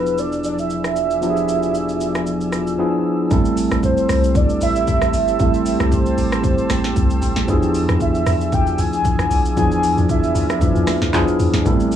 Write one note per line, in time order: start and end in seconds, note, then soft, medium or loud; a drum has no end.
0.00 2.75 E1 medium
0.00 1.18 F3 medium
0.00 3.27 F3 medium
0.00 1.18 B3 medium
0.00 1.18 D4 medium
0.00 1.19 E4 medium
0.00 1.19 G#4 medium
0.00 0.20 B4 medium
0.00 3.27 D5 medium
0.00 3.27 G#5 medium
0.00 3.27 E6 medium
0.06 shaker medium
0.18 0.44 D5 loud
0.18 shaker medium
0.32 shaker soft
0.44 0.58 D5 medium
0.44 shaker medium
0.58 2.75 E5 loud
0.58 shaker medium
0.70 shaker medium
0.84 cross-stick medium
0.84 shaker medium
0.96 shaker medium
1.11 shaker medium
1.21 2.75 F3 medium
1.21 2.75 B3 medium
1.21 2.76 D4 medium
1.21 2.76 E4 medium
1.21 1.30 G4 medium
1.21 shaker medium
1.30 2.79 G#4 medium
1.37 shaker soft
1.48 shaker medium
1.63 shaker soft
1.74 shaker medium
1.89 shaker soft
2.00 shaker medium
2.15 cross-stick medium
2.15 shaker medium
2.26 shaker medium
2.41 shaker soft
2.52 cross-stick medium
2.52 shaker medium
2.67 shaker medium
2.78 3.31 F3 medium
2.78 3.31 B3 medium
2.78 3.31 D4 medium
2.78 3.31 E4 medium
2.78 3.31 G#4 medium
3.30 3.66 A1 loud
3.30 5.35 G3 medium
3.30 5.35 A3 medium
3.30 5.36 C4 medium
3.30 5.36 E4 medium
3.30 7.44 G4 medium
3.30 5.36 A4 medium
3.30 7.44 C5 medium
3.30 7.44 A5 medium
3.30 9.53 E6 medium
3.30 kick loud
3.30 shaker medium
3.45 shaker medium
3.57 open hi-hat medium
3.57 shaker loud
3.71 4.04 A1 loud
3.71 cross-stick medium
3.71 shaker soft
3.83 4.38 C5 medium
3.83 kick medium
3.83 shaker medium
3.97 shaker medium
4.09 4.54 C2 medium
4.09 cross-stick medium
4.09 open hi-hat medium
4.09 shaker medium
4.24 shaker medium
4.35 4.62 D5 loud
4.35 kick loud
4.35 shaker medium
4.49 shaker soft
4.61 4.84 A1 medium
4.61 5.36 E5 loud
4.61 open hi-hat medium
4.61 shaker medium
4.76 shaker medium
4.87 kick medium
4.87 shaker medium
5.02 5.12 A1 loud
5.02 cross-stick medium
5.02 shaker medium
5.13 5.36 G1 medium
5.13 open hi-hat medium
5.13 shaker medium
5.28 shaker medium
5.39 5.74 A1 loud
5.39 7.44 G3 medium
5.39 7.44 A3 medium
5.39 7.44 C4 medium
5.39 7.45 E4 medium
5.39 7.45 A4 medium
5.39 5.95 E5 loud
5.39 kick loud
5.39 shaker medium
5.54 shaker medium
5.66 open hi-hat medium
5.66 shaker loud
5.80 6.13 C2 medium
5.80 cross-stick medium
5.80 shaker soft
5.92 7.23 C5 medium
5.92 kick medium
5.92 shaker medium
6.06 shaker medium
6.18 6.63 A1 loud
6.18 open hi-hat medium
6.18 shaker medium
6.32 cross-stick loud
6.32 shaker medium
6.44 kick loud
6.44 shaker medium
6.58 shaker soft
6.70 6.92 A1 loud
6.70 cross-stick medium
6.70 snare medium
6.70 open hi-hat medium
6.70 shaker loud
6.84 snare medium
6.84 shaker medium
6.96 7.19 C2 loud
6.96 kick medium
6.96 shaker medium
7.10 shaker medium
7.22 7.35 A1 loud
7.22 open hi-hat medium
7.22 shaker medium
7.36 7.47 A1 medium
7.36 snare medium
7.36 shaker medium
7.47 7.83 E2 loud
7.47 9.53 F3 medium
7.47 11.62 F3 medium
7.47 9.53 B3 medium
7.47 9.53 D4 medium
7.47 9.54 E4 medium
7.47 9.54 G#4 medium
7.47 11.62 D5 medium
7.47 11.10 G#5 medium
7.47 kick loud
7.47 shaker medium
7.63 shaker medium
7.74 open hi-hat medium
7.74 shaker medium
7.89 8.21 E2 loud
7.89 cross-stick loud
7.89 shaker soft
8.00 8.55 E5 medium
8.00 kick medium
8.00 shaker medium
8.15 shaker medium
8.27 8.71 E2 loud
8.27 cross-stick medium
8.27 open hi-hat medium
8.27 shaker medium
8.41 shaker medium
8.52 8.82 G5 loud
8.52 kick loud
8.52 shaker medium
8.67 shaker soft
8.78 9.01 D2 medium
8.78 9.58 G#5 loud
8.78 open hi-hat medium
8.78 shaker loud
8.93 shaker medium
9.05 kick medium
9.05 shaker medium
9.19 9.29 D2 medium
9.19 cross-stick medium
9.19 shaker medium
9.31 9.53 B1 loud
9.31 open hi-hat medium
9.31 shaker medium
9.45 shaker medium
9.56 9.92 E2 loud
9.56 10.59 F3 medium
9.56 10.59 B3 medium
9.56 10.59 D4 medium
9.56 10.60 E4 medium
9.56 10.60 G#4 medium
9.56 10.06 G#5 loud
9.56 11.12 F6 medium
9.56 kick loud
9.56 shaker medium
9.71 shaker medium
9.83 open hi-hat medium
9.83 shaker medium
9.97 10.30 E2 medium
9.97 shaker soft
10.09 11.36 E5 medium
10.09 kick medium
10.09 shaker medium
10.23 shaker medium
10.35 10.58 D2 loud
10.35 open hi-hat medium
10.35 shaker medium
10.50 cross-stick medium
10.50 shaker medium
10.61 10.74 D2 loud
10.61 11.12 F3 medium
10.61 11.12 B3 soft
10.61 11.13 D4 soft
10.61 11.13 E4 soft
10.61 11.14 B4 medium
10.61 kick loud
10.61 shaker medium
10.75 10.86 E2 medium
10.75 shaker soft
10.87 cross-stick medium
10.87 snare medium
10.87 open hi-hat medium
10.87 shaker loud
11.02 11.12 D2 medium
11.02 snare medium
11.02 shaker medium
11.13 11.26 E2 loud
11.13 11.66 F3 medium
11.13 11.65 B3 medium
11.13 11.66 D4 medium
11.13 11.65 E4 medium
11.13 11.66 G#4 medium
11.13 kick medium
11.13 clap loud
11.13 shaker medium
11.28 shaker medium
11.39 11.52 E2 medium
11.39 open hi-hat medium
11.39 shaker medium
11.54 11.64 D2 loud
11.54 snare medium
11.54 shaker medium
11.65 11.96 A1 loud
11.65 11.96 G3 medium
11.65 11.96 A3 medium
11.65 11.73 B3 medium
11.65 11.96 C4 medium
11.65 11.96 E4 medium
11.65 11.96 G4 medium
11.65 11.96 A4 medium
11.65 11.96 A5 medium
11.65 11.96 E6 medium
11.65 kick loud
11.65 low conga medium
11.65 shaker medium
11.72 11.96 C4 medium
11.80 shaker medium
11.92 open hi-hat medium
11.92 shaker medium